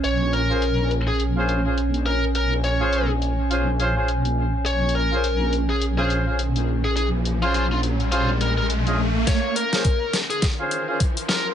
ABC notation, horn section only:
X:1
M:4/4
L:1/16
Q:"Swing 16ths" 1/4=104
K:Bbm
V:1 name="Horn section"
z3 [DFAc] z4 z [DFAc]2 [DFAc] z4 | z3 [DFAc]2 z3 [DFAc] z [DFAc] [DFAc] z4 | z3 [DFAc] z4 z [DFAc]2 [DFAc] z4 | z3 [DFAc]2 z3 [DFAc] z4 [DFAe] z2 |
z3 [DFAc] z4 z [DFAc]2 [DFAc] z4 |]